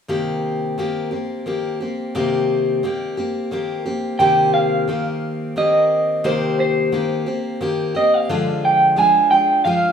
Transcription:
0.08 C3 D#3 A#3 C4 G4
0.78 D#3 A#3 C4 G4
1.11 A#3 C4 G4
1.46 D#3 A#3 C4 G4
1.80 A#3 C4 G4
2.15 C3 D#3 A#3 C4 G4
2.83 D#3 A#3 C4 G4
3.17 A#3 C4 G4
3.51 D#3 A#3 C4 G4
3.86 A#3 C4 G4
4.19 C3 D#3 A#3 C4 G4 G5
4.54 F5
4.88 D#3 A#3 C4 G4
5.56 D#3 A#3 C4 G4 D#5
6.24 C3 D#3 A#3 C4 G4 C5
6.60 C5
6.92 D#3 A#3 C4 G4
7.26 A#3 C4 G4
7.61 D#3 A#3 C4 G4
7.95 A#3 C4 G4 D#5
8.14 F5
8.29 D3 F3 G#3 D4 F4
8.65 G5
8.96 F3 G#3 D4 F4 G#5
9.31 G#3 D4 F4 G5
9.65 F3 G#3 D4 F4 F5

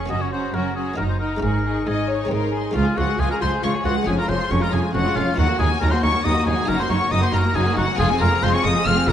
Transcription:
Already playing: G#4 C#6
0.06 A#3 C#4 F#4
0.10 F#1 F#2 C#4 F#4 D#5 A#5
0.21 C#5
0.32 C#4 F#4 C5 A#5
0.54 F#1 F#2 C#4 F#4 A#4 A#5
0.76 C#4 F#4 G#4 A#5
0.94 A#3 D#4 F#4 A#4
0.98 F#1 F#2 D#4 A#5
1.09 C5
1.19 D#4 A#4 A#5
1.37 G#3 C#4 D#4
1.42 G#1 G#2 D#4 G#4 A#4 C#6
1.65 D#4 G#4 C#6
1.87 G#1 G#2 D#4 G#4 D#5 C#6
2.09 D#4 C#5 C#6
2.25 G#3 C4 D#4
2.31 G#1 G#2 D#4 A#4 C6
2.53 D#4 G#4 C6
2.71 G#3 C#4 F4
2.75 C#2 F3 F4 F5
2.87 G#3 G#4
2.97 C#2 F3 F4 F#4 F#5
3.08 G#3 G#4
3.20 C#2 F3 F4 G#4 G#5
3.30 G#3 G#4 A#4 A#5
3.41 C#2 F3 F4 C5 C6
3.52 G#3 G#4
3.63 C#2 F3 F4 C#5 C#6
3.74 G#3 G#4
3.85 C#2 F3 F4 F#4 F#5
3.96 G#3 G#4
4.03 F1 G#3 C#4 F4 G#4
4.07 F2 F3 C#4 G#5
4.18 G#3 F4 A#4 A#5
4.29 F1 F2 F3 C#4 C5 C6
4.40 G#3 F4
4.51 F1 F2 F3 C#4 C#5 C#6
4.61 G#3 F4 A#4 A#5
4.72 F1 F2 F3 C#4 G#4 G#5
4.83 G#3 F4
4.94 F1 F2 F3 C#4 F#4 F#5
5.05 G#3 F4
5.16 F1 F2 F3 C#4 F4 F5
5.27 G#3 F4
5.34 D#2 F#3 A#3 D#4 F#4 F#5
5.39 D#2 D#4 F#4
5.49 A#3 F#4
5.59 D#2 F#3 D#4 G#4 G#5
5.71 A#3 F#4
5.81 D#2 F#3 D#4 A#4 A#5
5.91 A#3 F#4 C5 C6
6.03 D#2 F#3 D#4 C#5 C#6
6.14 A#3 F#4
6.25 D#2 F#3 D#4 D#5 D#6
6.36 A#3 F#4
6.46 D#2 F#3 D#4 G#4 G#5
6.58 A#3 F#4
6.64 A#3 D#4 F#4
6.68 F#1 F#2 F#3 D#4 A#4 A#5
6.79 A#3 F#4 C5 C6
6.90 F#1 F#2 F#3 D#4 C#5 C#6
7.01 A#3 F#4
7.12 F#1 F#2 F#3 D#4 D#5 D#6
7.23 A#3 F#4 C5 C6
7.33 F#1 F#2 F#3 D#4 A#4 A#5
7.44 A#3 F#4
7.55 F#1 F#2 F#3 D#4 G#4 G#5
7.66 A#3 F#4
7.77 F#1 F#2 F#3 D#4 F#4 F#5
7.88 A#3 F#4
7.95 G#3 C4 F4 G#4 G#5
7.99 F1 F2 F4 G#4
8.10 C4 G#4
8.21 F1 F2 G#3 F4 A#4 A#5
8.32 C4 G#4
8.43 F1 F2 G#3 F4 C5 C6
8.54 C4 G#4 C#5 C#6
8.64 F1 F2 G#3 F4 D#5 D#6
8.76 C4 G#4
8.86 F1 F2 G#3 F4 F5 F6
8.97 C4 G#4
9.08 F1 F2 G#3 F4 A#4 A#5

